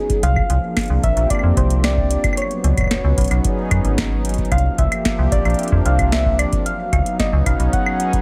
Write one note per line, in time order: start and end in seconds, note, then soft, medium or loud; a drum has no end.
0.00 0.23 F#3 medium
0.00 0.23 B3 medium
0.00 0.23 C#4 medium
0.00 0.23 D#4 medium
0.00 0.23 G#4 medium
0.00 0.25 G#4 medium
0.10 kick loud
0.10 closed hi-hat medium
0.23 0.41 C2 loud
0.23 2.37 F3 medium
0.23 1.05 F5 loud
0.23 closed hi-hat medium
0.36 kick loud
0.36 claves soft
0.47 0.59 C2 medium
0.47 2.37 D4 medium
0.47 closed hi-hat medium
0.54 2.37 A#3 medium
0.77 kick loud
0.77 snare loud
0.77 closed hi-hat medium
0.77 claves medium
0.79 closed hi-hat medium
0.81 closed hi-hat soft
0.83 2.37 C4 medium
0.83 closed hi-hat soft
0.86 closed hi-hat soft
0.88 0.99 C2 medium
0.88 closed hi-hat soft
1.03 1.12 A#1 medium
1.03 2.37 G4 medium
1.03 1.32 E5 loud
1.03 kick loud
1.03 closed hi-hat medium
1.17 1.26 A#1 medium
1.17 closed hi-hat medium
1.30 1.59 D5 medium
1.30 kick loud
1.30 closed hi-hat medium
1.30 claves soft
1.35 claves soft
1.39 claves soft
1.43 1.52 F2 medium
1.57 2.17 C2 medium
1.57 1.86 C5 medium
1.57 kick loud
1.57 closed hi-hat medium
1.70 closed hi-hat medium
1.84 2.37 D5 loud
1.84 snare loud
1.84 closed hi-hat medium
1.84 claves soft
1.97 kick loud
2.11 closed hi-hat medium
2.24 kick loud
2.24 closed hi-hat medium
2.24 claves medium
2.33 claves medium
2.37 4.52 F#3 medium
2.37 4.52 B3 medium
2.37 3.94 C#5 loud
2.37 closed hi-hat medium
2.42 claves soft
2.51 closed hi-hat soft
2.64 2.73 C#2 medium
2.64 closed hi-hat medium
2.77 kick loud
2.77 closed hi-hat soft
2.77 claves soft
2.81 kick medium
2.81 claves soft
2.84 4.52 C#4 medium
2.84 kick medium
2.84 claves soft
2.88 kick medium
2.88 snare loud
2.88 closed hi-hat medium
2.88 claves soft
2.94 kick soft
2.94 claves soft
2.98 kick soft
2.98 claves soft
3.01 3.13 C#2 medium
3.01 claves soft
3.18 3.27 B1 medium
3.18 kick loud
3.18 closed hi-hat medium
3.21 4.52 D#4 medium
3.21 closed hi-hat medium
3.24 closed hi-hat soft
3.28 closed hi-hat soft
3.31 3.40 B1 medium
3.31 4.51 G#4 medium
3.31 closed hi-hat soft
3.31 claves soft
3.44 kick loud
3.44 closed hi-hat medium
3.71 3.80 F#2 medium
3.71 kick loud
3.71 closed hi-hat medium
3.71 claves medium
3.85 4.44 G#1 medium
3.85 closed hi-hat medium
3.98 kick loud
3.98 snare loud
3.98 closed hi-hat medium
4.25 closed hi-hat medium
4.29 closed hi-hat medium
4.34 closed hi-hat soft
4.38 kick loud
4.38 closed hi-hat soft
4.45 closed hi-hat soft
4.52 4.69 C2 loud
4.52 6.66 F3 medium
4.52 4.80 F5 loud
4.52 kick loud
4.52 closed hi-hat medium
4.52 claves soft
4.58 closed hi-hat soft
4.66 6.66 A#3 medium
4.78 4.87 C2 medium
4.78 6.66 G4 medium
4.78 5.34 E5 loud
4.78 kick loud
4.78 closed hi-hat medium
4.92 closed hi-hat soft
4.92 claves medium
5.05 kick loud
5.05 snare loud
5.05 closed hi-hat medium
5.13 6.66 C4 medium
5.19 5.28 C2 medium
5.24 6.66 D4 medium
5.32 5.41 A#1 medium
5.32 5.87 D5 loud
5.32 kick loud
5.32 closed hi-hat medium
5.45 5.54 A#1 medium
5.45 closed hi-hat soft
5.45 claves soft
5.50 closed hi-hat soft
5.54 closed hi-hat soft
5.59 closed hi-hat medium
5.63 closed hi-hat soft
5.68 closed hi-hat soft
5.72 5.81 F2 medium
5.72 kick loud
5.86 6.45 C2 medium
5.86 6.12 F5 loud
5.86 closed hi-hat medium
5.99 kick loud
5.99 closed hi-hat soft
5.99 claves soft
6.12 6.41 E5 loud
6.12 snare loud
6.12 closed hi-hat medium
6.26 kick loud
6.39 6.67 D5 loud
6.39 closed hi-hat medium
6.39 claves medium
6.52 kick loud
6.52 closed hi-hat soft
6.66 8.22 F#3 medium
6.66 7.21 F5 loud
6.66 closed hi-hat medium
6.83 8.22 B3 medium
6.88 8.22 D#4 medium
6.93 7.02 C#2 medium
6.93 kick loud
6.93 closed hi-hat medium
6.93 claves medium
7.06 closed hi-hat soft
7.19 8.22 C#4 medium
7.19 7.48 D#5 loud
7.19 kick loud
7.19 snare loud
7.19 closed hi-hat medium
7.33 7.42 C#2 medium
7.46 7.55 B1 medium
7.46 7.73 F5 loud
7.46 kick loud
7.46 closed hi-hat medium
7.46 claves soft
7.60 7.68 B1 medium
7.60 8.22 G#4 medium
7.60 closed hi-hat soft
7.73 8.22 F#5 loud
7.73 kick loud
7.73 closed hi-hat medium
7.86 claves medium
8.00 closed hi-hat medium
8.13 kick loud
8.13 closed hi-hat soft